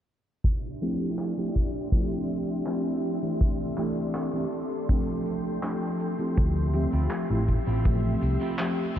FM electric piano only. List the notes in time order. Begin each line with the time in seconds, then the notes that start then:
0.81 F3 A3 C4 E4 G4
1.37 F3 A3 C4 E4 G4
1.92 F3 A3 C4 E4 G4
2.66 F3 A3 C4 E4 G4
3.22 E3 A3 C4 D4 G4
3.77 E3 A3 C4 D4 G4
4.33 E3 A3 C4 D4 G4
4.88 F3 A3 C4 D4 G4
5.62 F3 A3 C4 D4 G4
6.19 F3 A3 C4 E4 G4
6.74 F3 A3 C4 G4 E5
7.29 F3 A3 C4 E4 G4
7.85 F3 A3 C4 G4 E5
8.59 F3 A3 C4 G4 E5